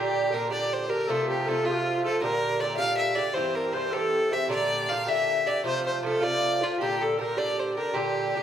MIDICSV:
0, 0, Header, 1, 4, 480
1, 0, Start_track
1, 0, Tempo, 382409
1, 1342, Time_signature, 6, 3, 24, 8
1, 10578, End_track
2, 0, Start_track
2, 0, Title_t, "Fiddle"
2, 0, Program_c, 0, 110
2, 0, Note_on_c, 0, 67, 93
2, 420, Note_on_c, 0, 70, 94
2, 439, Note_off_c, 0, 67, 0
2, 636, Note_off_c, 0, 70, 0
2, 651, Note_on_c, 0, 74, 88
2, 915, Note_on_c, 0, 72, 80
2, 933, Note_off_c, 0, 74, 0
2, 1129, Note_on_c, 0, 70, 90
2, 1148, Note_off_c, 0, 72, 0
2, 1387, Note_on_c, 0, 69, 97
2, 1406, Note_off_c, 0, 70, 0
2, 1620, Note_off_c, 0, 69, 0
2, 1627, Note_on_c, 0, 67, 83
2, 1856, Note_on_c, 0, 69, 93
2, 1875, Note_off_c, 0, 67, 0
2, 2075, Note_on_c, 0, 65, 98
2, 2093, Note_off_c, 0, 69, 0
2, 2558, Note_off_c, 0, 65, 0
2, 2573, Note_on_c, 0, 69, 99
2, 2775, Note_off_c, 0, 69, 0
2, 2795, Note_on_c, 0, 70, 107
2, 3263, Note_on_c, 0, 74, 93
2, 3281, Note_off_c, 0, 70, 0
2, 3471, Note_off_c, 0, 74, 0
2, 3479, Note_on_c, 0, 77, 118
2, 3722, Note_off_c, 0, 77, 0
2, 3729, Note_on_c, 0, 76, 94
2, 3958, Note_on_c, 0, 74, 100
2, 3976, Note_off_c, 0, 76, 0
2, 4186, Note_on_c, 0, 72, 90
2, 4205, Note_off_c, 0, 74, 0
2, 4461, Note_on_c, 0, 70, 80
2, 4480, Note_off_c, 0, 72, 0
2, 4680, Note_on_c, 0, 72, 92
2, 4699, Note_off_c, 0, 70, 0
2, 4930, Note_on_c, 0, 69, 106
2, 4949, Note_off_c, 0, 72, 0
2, 5435, Note_on_c, 0, 76, 94
2, 5454, Note_off_c, 0, 69, 0
2, 5653, Note_off_c, 0, 76, 0
2, 5661, Note_on_c, 0, 74, 107
2, 6135, Note_on_c, 0, 77, 94
2, 6154, Note_off_c, 0, 74, 0
2, 6380, Note_on_c, 0, 76, 102
2, 6399, Note_off_c, 0, 77, 0
2, 6865, Note_on_c, 0, 74, 94
2, 6883, Note_off_c, 0, 76, 0
2, 7086, Note_off_c, 0, 74, 0
2, 7093, Note_on_c, 0, 72, 107
2, 7340, Note_off_c, 0, 72, 0
2, 7356, Note_on_c, 0, 72, 81
2, 7572, Note_off_c, 0, 72, 0
2, 7590, Note_on_c, 0, 69, 96
2, 7825, Note_on_c, 0, 74, 111
2, 7844, Note_off_c, 0, 69, 0
2, 8325, Note_on_c, 0, 65, 92
2, 8344, Note_off_c, 0, 74, 0
2, 8523, Note_off_c, 0, 65, 0
2, 8531, Note_on_c, 0, 67, 90
2, 8806, Note_on_c, 0, 69, 81
2, 8825, Note_off_c, 0, 67, 0
2, 9034, Note_off_c, 0, 69, 0
2, 9041, Note_on_c, 0, 70, 85
2, 9261, Note_on_c, 0, 74, 96
2, 9280, Note_off_c, 0, 70, 0
2, 9533, Note_on_c, 0, 72, 80
2, 9552, Note_off_c, 0, 74, 0
2, 9742, Note_off_c, 0, 72, 0
2, 9750, Note_on_c, 0, 70, 83
2, 9967, Note_on_c, 0, 67, 89
2, 9986, Note_off_c, 0, 70, 0
2, 10578, Note_off_c, 0, 67, 0
2, 10578, End_track
3, 0, Start_track
3, 0, Title_t, "Flute"
3, 0, Program_c, 1, 73
3, 0, Note_on_c, 1, 67, 72
3, 375, Note_on_c, 1, 70, 65
3, 394, Note_off_c, 1, 67, 0
3, 596, Note_off_c, 1, 70, 0
3, 604, Note_on_c, 1, 74, 81
3, 1068, Note_off_c, 1, 74, 0
3, 1101, Note_on_c, 1, 70, 81
3, 1338, Note_on_c, 1, 69, 69
3, 1357, Note_off_c, 1, 70, 0
3, 1590, Note_on_c, 1, 67, 80
3, 1609, Note_off_c, 1, 69, 0
3, 1781, Note_on_c, 1, 70, 50
3, 1799, Note_off_c, 1, 67, 0
3, 1830, Note_on_c, 1, 69, 77
3, 1849, Note_off_c, 1, 70, 0
3, 2057, Note_on_c, 1, 65, 83
3, 2076, Note_off_c, 1, 69, 0
3, 2553, Note_on_c, 1, 69, 78
3, 2572, Note_off_c, 1, 65, 0
3, 2759, Note_off_c, 1, 69, 0
3, 2766, Note_on_c, 1, 70, 73
3, 3260, Note_on_c, 1, 74, 81
3, 3279, Note_off_c, 1, 70, 0
3, 3411, Note_off_c, 1, 74, 0
3, 3425, Note_on_c, 1, 76, 67
3, 3506, Note_on_c, 1, 77, 103
3, 3525, Note_off_c, 1, 76, 0
3, 3957, Note_off_c, 1, 77, 0
3, 3964, Note_on_c, 1, 74, 82
3, 4192, Note_on_c, 1, 72, 70
3, 4211, Note_off_c, 1, 74, 0
3, 4467, Note_off_c, 1, 72, 0
3, 4477, Note_on_c, 1, 70, 79
3, 4697, Note_on_c, 1, 72, 75
3, 4716, Note_off_c, 1, 70, 0
3, 4901, Note_on_c, 1, 69, 83
3, 4920, Note_off_c, 1, 72, 0
3, 5401, Note_on_c, 1, 76, 72
3, 5420, Note_off_c, 1, 69, 0
3, 5617, Note_off_c, 1, 76, 0
3, 5624, Note_on_c, 1, 74, 83
3, 6032, Note_off_c, 1, 74, 0
3, 6365, Note_on_c, 1, 76, 92
3, 6876, Note_on_c, 1, 74, 76
3, 6895, Note_off_c, 1, 76, 0
3, 7092, Note_on_c, 1, 72, 67
3, 7111, Note_off_c, 1, 74, 0
3, 7347, Note_off_c, 1, 72, 0
3, 7354, Note_on_c, 1, 72, 66
3, 7571, Note_off_c, 1, 72, 0
3, 7814, Note_on_c, 1, 74, 85
3, 8294, Note_on_c, 1, 65, 71
3, 8313, Note_off_c, 1, 74, 0
3, 8535, Note_on_c, 1, 67, 61
3, 8554, Note_off_c, 1, 65, 0
3, 8813, Note_on_c, 1, 69, 76
3, 8831, Note_off_c, 1, 67, 0
3, 9008, Note_on_c, 1, 70, 68
3, 9027, Note_off_c, 1, 69, 0
3, 9232, Note_off_c, 1, 70, 0
3, 9240, Note_on_c, 1, 74, 74
3, 9922, Note_off_c, 1, 74, 0
3, 9982, Note_on_c, 1, 67, 60
3, 10578, Note_off_c, 1, 67, 0
3, 10578, End_track
4, 0, Start_track
4, 0, Title_t, "Bouzouki"
4, 0, Program_c, 2, 25
4, 0, Note_on_c, 2, 46, 75
4, 0, Note_on_c, 2, 50, 74
4, 0, Note_on_c, 2, 62, 89
4, 0, Note_on_c, 2, 67, 85
4, 391, Note_off_c, 2, 46, 0
4, 398, Note_off_c, 2, 50, 0
4, 400, Note_off_c, 2, 62, 0
4, 404, Note_off_c, 2, 67, 0
4, 406, Note_on_c, 2, 46, 67
4, 423, Note_on_c, 2, 50, 61
4, 429, Note_on_c, 2, 62, 72
4, 439, Note_on_c, 2, 67, 59
4, 622, Note_off_c, 2, 67, 0
4, 629, Note_off_c, 2, 46, 0
4, 635, Note_off_c, 2, 50, 0
4, 637, Note_on_c, 2, 67, 62
4, 641, Note_off_c, 2, 62, 0
4, 650, Note_on_c, 2, 50, 58
4, 653, Note_on_c, 2, 62, 64
4, 664, Note_on_c, 2, 46, 50
4, 1104, Note_off_c, 2, 67, 0
4, 1119, Note_on_c, 2, 67, 51
4, 1125, Note_off_c, 2, 62, 0
4, 1126, Note_off_c, 2, 50, 0
4, 1134, Note_off_c, 2, 46, 0
4, 1140, Note_on_c, 2, 62, 44
4, 1164, Note_on_c, 2, 50, 41
4, 1345, Note_off_c, 2, 67, 0
4, 1355, Note_off_c, 2, 62, 0
4, 1355, Note_on_c, 2, 48, 76
4, 1357, Note_off_c, 2, 50, 0
4, 1362, Note_on_c, 2, 53, 69
4, 1372, Note_on_c, 2, 57, 89
4, 1379, Note_on_c, 2, 65, 75
4, 1839, Note_off_c, 2, 48, 0
4, 1842, Note_off_c, 2, 53, 0
4, 1847, Note_off_c, 2, 57, 0
4, 1851, Note_off_c, 2, 65, 0
4, 1853, Note_on_c, 2, 48, 63
4, 1864, Note_on_c, 2, 53, 61
4, 1883, Note_on_c, 2, 57, 67
4, 1891, Note_on_c, 2, 65, 72
4, 2065, Note_off_c, 2, 65, 0
4, 2071, Note_off_c, 2, 48, 0
4, 2072, Note_off_c, 2, 57, 0
4, 2077, Note_off_c, 2, 53, 0
4, 2080, Note_on_c, 2, 65, 62
4, 2087, Note_on_c, 2, 57, 59
4, 2100, Note_on_c, 2, 53, 56
4, 2102, Note_on_c, 2, 48, 48
4, 2547, Note_off_c, 2, 65, 0
4, 2562, Note_on_c, 2, 65, 53
4, 2564, Note_off_c, 2, 57, 0
4, 2571, Note_off_c, 2, 53, 0
4, 2572, Note_off_c, 2, 48, 0
4, 2581, Note_on_c, 2, 57, 54
4, 2597, Note_on_c, 2, 53, 49
4, 2770, Note_on_c, 2, 46, 73
4, 2783, Note_off_c, 2, 53, 0
4, 2785, Note_off_c, 2, 65, 0
4, 2788, Note_on_c, 2, 50, 70
4, 2795, Note_off_c, 2, 57, 0
4, 2804, Note_on_c, 2, 62, 71
4, 2809, Note_on_c, 2, 67, 85
4, 3251, Note_off_c, 2, 46, 0
4, 3262, Note_off_c, 2, 50, 0
4, 3266, Note_on_c, 2, 46, 64
4, 3274, Note_off_c, 2, 62, 0
4, 3277, Note_on_c, 2, 50, 62
4, 3290, Note_on_c, 2, 62, 63
4, 3308, Note_off_c, 2, 67, 0
4, 3313, Note_on_c, 2, 67, 73
4, 3472, Note_off_c, 2, 67, 0
4, 3487, Note_on_c, 2, 67, 57
4, 3491, Note_off_c, 2, 62, 0
4, 3497, Note_off_c, 2, 46, 0
4, 3497, Note_off_c, 2, 50, 0
4, 3506, Note_on_c, 2, 62, 58
4, 3512, Note_on_c, 2, 50, 50
4, 3516, Note_on_c, 2, 46, 46
4, 3976, Note_off_c, 2, 67, 0
4, 3980, Note_off_c, 2, 62, 0
4, 3981, Note_on_c, 2, 67, 53
4, 3995, Note_on_c, 2, 62, 49
4, 3996, Note_off_c, 2, 50, 0
4, 3998, Note_off_c, 2, 46, 0
4, 4015, Note_on_c, 2, 50, 47
4, 4201, Note_on_c, 2, 43, 62
4, 4203, Note_off_c, 2, 50, 0
4, 4208, Note_on_c, 2, 52, 80
4, 4214, Note_off_c, 2, 67, 0
4, 4217, Note_off_c, 2, 62, 0
4, 4222, Note_on_c, 2, 60, 73
4, 4236, Note_on_c, 2, 67, 81
4, 4673, Note_off_c, 2, 43, 0
4, 4688, Note_on_c, 2, 43, 65
4, 4694, Note_off_c, 2, 52, 0
4, 4700, Note_off_c, 2, 60, 0
4, 4709, Note_on_c, 2, 52, 57
4, 4711, Note_off_c, 2, 67, 0
4, 4715, Note_on_c, 2, 60, 62
4, 4726, Note_on_c, 2, 67, 57
4, 4923, Note_off_c, 2, 67, 0
4, 4928, Note_off_c, 2, 43, 0
4, 4928, Note_off_c, 2, 60, 0
4, 4938, Note_off_c, 2, 52, 0
4, 4938, Note_on_c, 2, 67, 57
4, 4943, Note_on_c, 2, 60, 59
4, 4959, Note_on_c, 2, 52, 50
4, 4965, Note_on_c, 2, 43, 45
4, 5407, Note_off_c, 2, 67, 0
4, 5422, Note_on_c, 2, 67, 49
4, 5432, Note_off_c, 2, 60, 0
4, 5440, Note_off_c, 2, 52, 0
4, 5442, Note_off_c, 2, 43, 0
4, 5450, Note_on_c, 2, 60, 48
4, 5464, Note_on_c, 2, 52, 46
4, 5629, Note_on_c, 2, 46, 77
4, 5637, Note_off_c, 2, 52, 0
4, 5642, Note_on_c, 2, 50, 80
4, 5647, Note_off_c, 2, 67, 0
4, 5648, Note_off_c, 2, 60, 0
4, 5653, Note_on_c, 2, 62, 70
4, 5662, Note_on_c, 2, 67, 84
4, 6123, Note_off_c, 2, 46, 0
4, 6138, Note_on_c, 2, 46, 59
4, 6141, Note_off_c, 2, 50, 0
4, 6147, Note_off_c, 2, 62, 0
4, 6151, Note_off_c, 2, 67, 0
4, 6160, Note_on_c, 2, 50, 61
4, 6172, Note_on_c, 2, 62, 64
4, 6179, Note_on_c, 2, 67, 74
4, 6340, Note_off_c, 2, 67, 0
4, 6352, Note_off_c, 2, 50, 0
4, 6355, Note_on_c, 2, 67, 65
4, 6358, Note_off_c, 2, 62, 0
4, 6367, Note_on_c, 2, 50, 57
4, 6373, Note_off_c, 2, 46, 0
4, 6373, Note_on_c, 2, 62, 58
4, 6391, Note_on_c, 2, 46, 48
4, 6837, Note_off_c, 2, 67, 0
4, 6852, Note_on_c, 2, 67, 56
4, 6854, Note_off_c, 2, 62, 0
4, 6864, Note_off_c, 2, 50, 0
4, 6869, Note_on_c, 2, 62, 43
4, 6876, Note_off_c, 2, 46, 0
4, 6893, Note_on_c, 2, 50, 51
4, 7077, Note_off_c, 2, 50, 0
4, 7081, Note_on_c, 2, 48, 70
4, 7082, Note_on_c, 2, 53, 65
4, 7089, Note_off_c, 2, 67, 0
4, 7090, Note_off_c, 2, 62, 0
4, 7094, Note_on_c, 2, 65, 69
4, 7095, Note_on_c, 2, 57, 69
4, 7550, Note_off_c, 2, 48, 0
4, 7565, Note_on_c, 2, 48, 62
4, 7572, Note_off_c, 2, 53, 0
4, 7587, Note_on_c, 2, 53, 64
4, 7588, Note_off_c, 2, 65, 0
4, 7589, Note_off_c, 2, 57, 0
4, 7608, Note_on_c, 2, 57, 68
4, 7615, Note_on_c, 2, 65, 70
4, 7772, Note_off_c, 2, 65, 0
4, 7786, Note_off_c, 2, 57, 0
4, 7787, Note_on_c, 2, 65, 62
4, 7794, Note_off_c, 2, 53, 0
4, 7801, Note_on_c, 2, 57, 54
4, 7803, Note_off_c, 2, 48, 0
4, 7809, Note_on_c, 2, 53, 52
4, 7818, Note_on_c, 2, 48, 57
4, 8280, Note_off_c, 2, 65, 0
4, 8295, Note_on_c, 2, 65, 54
4, 8302, Note_off_c, 2, 57, 0
4, 8306, Note_off_c, 2, 53, 0
4, 8311, Note_off_c, 2, 48, 0
4, 8315, Note_on_c, 2, 57, 52
4, 8324, Note_on_c, 2, 53, 48
4, 8533, Note_off_c, 2, 65, 0
4, 8543, Note_off_c, 2, 57, 0
4, 8547, Note_off_c, 2, 53, 0
4, 8548, Note_on_c, 2, 46, 74
4, 8552, Note_on_c, 2, 62, 75
4, 8553, Note_on_c, 2, 50, 76
4, 8566, Note_on_c, 2, 67, 83
4, 8988, Note_off_c, 2, 46, 0
4, 9003, Note_on_c, 2, 46, 54
4, 9016, Note_off_c, 2, 50, 0
4, 9021, Note_on_c, 2, 50, 58
4, 9027, Note_off_c, 2, 62, 0
4, 9032, Note_on_c, 2, 62, 63
4, 9044, Note_off_c, 2, 67, 0
4, 9049, Note_on_c, 2, 67, 63
4, 9232, Note_off_c, 2, 67, 0
4, 9247, Note_off_c, 2, 46, 0
4, 9247, Note_on_c, 2, 67, 59
4, 9250, Note_off_c, 2, 62, 0
4, 9253, Note_off_c, 2, 50, 0
4, 9266, Note_on_c, 2, 62, 67
4, 9268, Note_on_c, 2, 50, 64
4, 9277, Note_on_c, 2, 46, 53
4, 9749, Note_off_c, 2, 67, 0
4, 9754, Note_on_c, 2, 67, 61
4, 9761, Note_off_c, 2, 46, 0
4, 9763, Note_off_c, 2, 62, 0
4, 9768, Note_on_c, 2, 62, 45
4, 9793, Note_off_c, 2, 50, 0
4, 9793, Note_on_c, 2, 50, 53
4, 9956, Note_off_c, 2, 50, 0
4, 9961, Note_on_c, 2, 46, 68
4, 9974, Note_off_c, 2, 62, 0
4, 9978, Note_on_c, 2, 50, 86
4, 9984, Note_off_c, 2, 67, 0
4, 9990, Note_on_c, 2, 62, 69
4, 9997, Note_on_c, 2, 67, 78
4, 10448, Note_off_c, 2, 46, 0
4, 10463, Note_on_c, 2, 46, 63
4, 10472, Note_off_c, 2, 50, 0
4, 10478, Note_off_c, 2, 62, 0
4, 10482, Note_off_c, 2, 67, 0
4, 10488, Note_on_c, 2, 50, 63
4, 10500, Note_on_c, 2, 62, 60
4, 10506, Note_on_c, 2, 67, 78
4, 10578, Note_off_c, 2, 46, 0
4, 10578, Note_off_c, 2, 50, 0
4, 10578, Note_off_c, 2, 62, 0
4, 10578, Note_off_c, 2, 67, 0
4, 10578, End_track
0, 0, End_of_file